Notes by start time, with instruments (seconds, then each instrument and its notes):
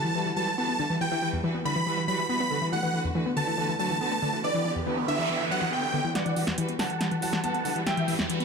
Already playing: supersaw synth A5
0.05 synth arpeggio sound E3
0.15 synth arpeggio sound E3, string section E3 G3 F#4 B4
0.26 synth arpeggio sound E3
0.36 string section E3 G3 F#4 B4, synth arpeggio sound F#3, supersaw synth A5
0.47 synth arpeggio sound E3
0.58 string section E3 G3 F#4 B4, synth arpeggio sound B3, supersaw synth A5
0.69 synth arpeggio sound B3
0.79 synth arpeggio sound D3, string section E3 G3 F#4 B4
0.90 string section E3 G3 F#4 B4, synth arpeggio sound E3
1.01 string section E3 G3 F#4 B4, synth arpeggio sound E3, supersaw synth G5
1.11 string section E3 G3 F#4 B4, synth arpeggio sound E3
1.22 string section E3 G3 F#4 B4, synth arpeggio sound E3
1.33 synth arpeggio sound E2
1.44 string section E3 G3 F#4 B4, synth arpeggio sound E3
1.55 synth arpeggio sound B3
1.65 synth arpeggio sound D3, string section E3 G3 F#4 B4, supersaw synth B5
1.76 synth arpeggio sound E3
1.87 synth arpeggio sound E3, string section E3 G3 F#4 B4
1.97 synth arpeggio sound E3
2.08 string section E3 G3 F#4 B4, synth arpeggio sound F#3, supersaw synth B5
2.19 synth arpeggio sound E3
2.29 string section E3 G3 F#4 B4, synth arpeggio sound B3, supersaw synth B5
2.40 synth arpeggio sound B3
2.51 synth arpeggio sound D3, string section E3 G3 F#4 B4
2.62 synth arpeggio sound E3, string section E3 G3 F#4 B4
2.72 string section D3 A3 F#4 B4, synth arpeggio sound E3, supersaw synth F#5
2.83 string section D3 A3 F#4 B4, synth arpeggio sound E3
2.94 string section D3 A3 F#4 B4, synth arpeggio sound E3
3.04 synth arpeggio sound E2
3.15 string section D3 A3 F#4 B4, synth arpeggio sound E3
3.26 synth arpeggio sound B3
3.36 string section D3 A3 F#4 B4, synth arpeggio sound D3, supersaw synth A5
3.47 synth arpeggio sound E3
3.58 string section D3 A3 F#4 B4, synth arpeggio sound E3
3.69 synth arpeggio sound E3
3.79 string section D3 A3 F#4 B4, synth arpeggio sound F#3, supersaw synth A5
3.90 synth arpeggio sound E3
4.01 string section D3 A3 F#4 B4, synth arpeggio sound B3, supersaw synth A5
4.12 synth arpeggio sound B3
4.22 synth arpeggio sound D3, string section D3 A3 F#4 B4
4.33 string section D3 A3 F#4 B4, synth arpeggio sound E3
4.44 string section D3 B3 G4 B4, synth arpeggio sound E3, supersaw synth D5, noise sweep
4.54 string section D3 B3 G4 B4, synth arpeggio sound E3
4.65 string section D3 B3 G4 B4, synth arpeggio sound E3
4.76 synth arpeggio sound E2
4.87 string section D3 B3 G4 B4, synth arpeggio sound E3
4.97 synth arpeggio sound B3
5.08 synth arpeggio sound D3, string section D3 B3 G4 B4, supersaw synth E5
5.19 synth arpeggio sound E3
5.29 string section D3 B3 G4 B4, synth arpeggio sound E3
5.40 synth arpeggio sound E3
5.51 string section D3 B3 G4 B4, synth arpeggio sound F#3, supersaw synth F#5
5.62 synth arpeggio sound E3
5.72 string section D3 B3 G4 B4, synth arpeggio sound B3, supersaw synth G5
5.83 synth arpeggio sound B3
5.94 string section D3 B3 G4 B4, synth arpeggio sound D3
6.04 string section D3 B3 G4 B4, synth arpeggio sound E3
6.15 synth arpeggio sound E3, string section E3 G3 F#4 B4, supersaw synth D5 F#5, grand piano F#5, snare, closed hi-hat, riser
6.26 synth arpeggio sound E3, string section E3 G3 F#4 B4, closed hi-hat
6.36 string section E3 G3 F#4 B4, synth arpeggio sound E3, open hi-hat
6.47 synth arpeggio sound E2, snare, closed hi-hat
6.58 synth arpeggio sound E3, string section E3 G3 F#4 B4, closed hi-hat
6.69 synth arpeggio sound B3, closed hi-hat
6.79 synth arpeggio sound D3, string section E3 G3 F#4 B4, supersaw synth F#5 A5, grand piano A5, snare, open hi-hat
6.90 synth arpeggio sound E3, closed hi-hat
7.01 string section E3 G3 F#4 B4, synth arpeggio sound E3, snare, closed hi-hat
7.11 synth arpeggio sound E3, closed hi-hat
7.22 string section E3 G3 F#4 B4, synth arpeggio sound F#3, supersaw synth F#5 A5, grand piano A5, open hi-hat
7.33 synth arpeggio sound E3, snare, closed hi-hat
7.44 string section E3 G3 F#4 B4, synth arpeggio sound B3, supersaw synth F#5 A5, grand piano A5, closed hi-hat
7.54 synth arpeggio sound B3, closed hi-hat
7.65 synth arpeggio sound D3, string section E3 G3 F#4 B4, open hi-hat
7.76 synth arpeggio sound E3, string section E3 G3 F#4 B4, closed hi-hat
7.87 string section E3 G3 F#4 B4, synth arpeggio sound E3, supersaw synth E5 G5, grand piano G5, snare, closed hi-hat
7.97 synth arpeggio sound E3, string section E3 G3 F#4 B4, closed hi-hat
8.08 synth arpeggio sound E3, string section E3 G3 F#4 B4, open hi-hat
8.19 synth arpeggio sound E2, snare
8.29 string section E3 G3 F#4 B4, synth arpeggio sound E3, closed hi-hat
8.40 synth arpeggio sound B3, closed hi-hat